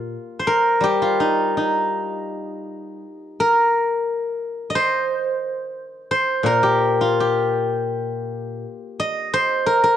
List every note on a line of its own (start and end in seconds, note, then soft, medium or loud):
0.00 0.14 A#2 medium
0.00 1.01 F4 medium
0.00 0.66 G4 medium
0.00 0.25 A#4 medium
0.39 2.37 C5 medium
0.47 2.60 A#4 medium
0.80 3.02 G3 soft
0.80 3.19 G4 medium
1.02 3.54 F4 medium
1.20 1.57 D#4 medium
1.57 4.28 D#4 soft
3.40 5.53 A#4 medium
4.70 6.49 D#5 medium
4.75 6.11 C5 medium
6.11 8.09 C5 medium
6.43 8.63 A#2 medium
6.43 8.59 A#4 medium
6.63 7.20 G4 medium
7.01 9.54 F4 medium
7.20 9.56 G4 medium
9.00 9.97 D#5 medium
9.34 9.97 C5 loud
9.66 9.83 A#4 medium
9.84 9.97 A#4 medium